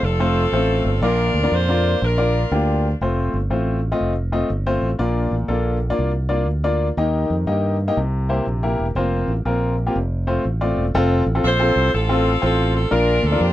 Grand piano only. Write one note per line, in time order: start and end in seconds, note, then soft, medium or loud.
0.20 0.42 A3 medium
0.20 0.42 C4 medium
0.20 0.42 F4 medium
0.20 0.42 C5 medium
0.53 0.88 A3 medium
0.53 0.88 C4 medium
0.53 0.88 F4 medium
0.53 0.88 C5 medium
1.02 1.80 A#2 medium
1.02 1.30 A#3 medium
1.02 1.30 D4 medium
1.02 1.30 F4 medium
1.02 1.30 D5 medium
1.43 1.55 A#3 medium
1.43 1.55 D4 medium
1.43 1.55 F4 medium
1.43 1.55 D5 medium
1.69 1.96 A#3 medium
1.69 1.96 D4 medium
1.69 1.96 F4 medium
1.69 1.96 D5 medium
2.18 2.40 A#3 medium
2.18 2.40 D4 medium
2.18 2.40 F4 medium
2.18 2.40 D5 medium
2.52 2.86 A#3 medium
2.52 2.86 D4 medium
2.52 2.86 F4 medium
2.52 2.86 G4 medium
3.02 3.36 A3 medium
3.02 3.36 C4 medium
3.02 3.36 F4 medium
3.02 3.36 C5 medium
3.50 3.78 A3 medium
3.50 3.78 C4 medium
3.50 3.78 F4 medium
3.50 3.78 C5 medium
3.92 4.12 A3 medium
3.92 4.12 C4 medium
3.92 4.12 F4 medium
3.92 4.12 D#5 medium
4.32 4.48 A3 medium
4.32 4.47 C4 medium
4.32 4.47 F4 medium
4.32 4.48 D#5 medium
4.66 4.88 A3 medium
4.66 4.89 C4 medium
4.66 4.89 F4 medium
4.66 4.89 C5 medium
4.99 5.77 A#2 medium
4.99 5.34 A#3 medium
4.99 5.34 D4 medium
4.99 5.34 F4 medium
4.99 5.34 D5 medium
5.48 5.77 A#3 medium
5.48 5.76 D4 medium
5.48 5.76 F4 medium
5.48 5.76 A4 medium
5.90 6.10 A#3 medium
5.90 6.10 D4 medium
5.90 6.10 F4 medium
5.90 6.10 D5 medium
6.29 6.45 A#3 medium
6.29 6.45 D4 medium
6.29 6.45 F4 medium
6.29 6.45 D5 medium
6.64 6.87 A#3 medium
6.64 6.87 D4 medium
6.64 6.87 F4 medium
6.64 6.87 D5 medium
6.98 7.76 D#3 medium
6.98 7.33 A#3 medium
6.98 7.32 D#4 medium
6.98 7.33 G4 medium
6.98 7.33 D#5 medium
7.47 7.75 A#3 medium
7.47 7.75 D#4 medium
7.47 7.75 G4 medium
7.47 7.75 D#5 medium
7.88 7.97 A#3 medium
7.88 7.97 D#4 medium
7.88 7.97 G4 medium
7.88 7.97 D#5 medium
7.97 8.75 C3 medium
8.29 8.45 A#3 medium
8.29 8.44 E4 medium
8.29 8.45 G4 medium
8.29 8.45 C5 medium
8.63 8.86 A#3 medium
8.63 8.85 E4 medium
8.63 8.85 G4 medium
8.63 8.85 A#4 medium
8.96 9.31 A#3 medium
8.96 9.31 C4 medium
8.96 9.31 F4 medium
8.96 9.31 C5 medium
9.45 9.74 A#3 medium
9.45 9.74 C4 medium
9.45 9.73 F4 medium
9.45 9.74 A#4 medium
9.87 9.96 A#3 medium
9.87 9.96 C4 medium
9.87 9.96 F4 medium
9.87 9.95 G4 medium
10.27 10.42 A3 medium
10.27 10.43 C4 medium
10.27 10.43 F4 medium
10.27 10.43 C5 medium
10.61 10.83 A3 medium
10.61 10.83 C4 medium
10.61 10.83 F4 medium
10.61 10.83 D5 medium
10.95 11.22 C4 loud
10.95 11.22 F4 medium
10.95 11.22 A4 loud
11.35 11.46 C4 medium
11.35 11.46 F4 medium
11.35 11.46 A4 medium
11.59 11.87 C4 medium
11.59 11.87 F4 medium
11.59 11.87 A4 medium
12.09 12.31 C4 medium
12.09 12.31 F4 medium
12.09 12.31 A4 medium
12.42 12.76 C4 medium
12.42 12.76 F4 medium
12.42 12.76 C5 medium
12.91 13.53 A#2 medium
12.91 13.18 D4 medium
12.91 13.19 F4 medium
12.91 13.18 A#4 medium
13.32 13.43 D4 medium
13.32 13.43 F4 medium
13.32 13.43 A#4 medium